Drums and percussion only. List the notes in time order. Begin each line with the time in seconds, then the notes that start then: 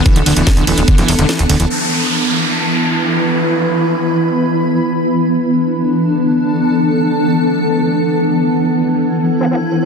0.06 kick, closed hi-hat
0.16 closed hi-hat
0.26 open hi-hat, ride
0.37 closed hi-hat
0.47 kick, snare, closed hi-hat
0.57 closed hi-hat
0.67 open hi-hat, ride
0.78 closed hi-hat
0.88 kick, closed hi-hat
0.98 snare, closed hi-hat
1.08 open hi-hat, ride
1.19 closed hi-hat
1.29 snare, closed hi-hat
1.39 closed hi-hat
1.49 open hi-hat, ride
1.60 closed hi-hat
1.70 crash